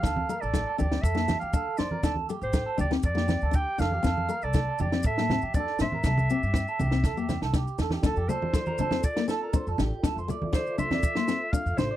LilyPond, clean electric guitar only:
\new Staff \with { instrumentName = "Clean electric guitar" } { \time 4/4 \key d \minor \tempo 4 = 120 a'8 bes'16 a'8 a'16 g'8 a'16 a'8 g'16 a'8 c''16 bes'16 | a'8 g'16 g'8 a'16 g'8 r16 g'8 a'16 g'8 a'16 g'16 | a'8 bes'16 a'8 a'16 g'8 a'16 a'8 g'16 a'8 c''16 bes'16 | a'8 g'16 g'8 a'16 g'8 a'16 g'8 a'16 g'8 a'16 g'16 |
a'16 g'16 a'8 c''16 bes'16 a'8 r8 a'16 bes'16 c''16 a'16 g'8 | a'16 c''16 d''8 d''8 c''16 d''8 c''8 r8. c''16 d''16 | }